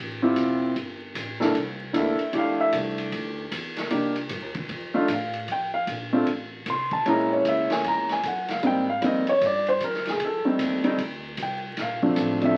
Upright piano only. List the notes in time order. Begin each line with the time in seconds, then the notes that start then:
0.22 C4 E4 F4 G4
1.40 A#3 D4 E4 A4
1.93 A#3 D4 E4 A4
1.98 E5
2.33 A3 D4 E4 G4
2.38 F5
2.61 E5
3.91 A#3 D4 D#4 G4
4.94 A3 D4 D#4 F4
5.13 F5
5.52 G5
5.74 F5
6.13 A3 C4 D4 F4
6.70 C6
6.93 A5
7.05 G#3 A#3 C#4 E4 A#5
7.33 C#5
7.48 E5
7.72 G#5
7.88 A#5
8.12 G#5
8.28 F#5
8.51 F5
8.63 G3 A#3 C4 D#4 G5
8.89 F5
9.02 G3 A#3 C4 D#4 D5
9.07 D#5
9.29 C#5
9.46 D5
9.69 C5
9.84 A#4
10.09 G#4
10.25 A4
10.45 G3 A3 C4 D#4
10.84 G3 A3 C4 D#4
11.43 G5
11.82 F5
12.02 F3 A3 C4 D4
12.41 F3 A3 C4 D4 E5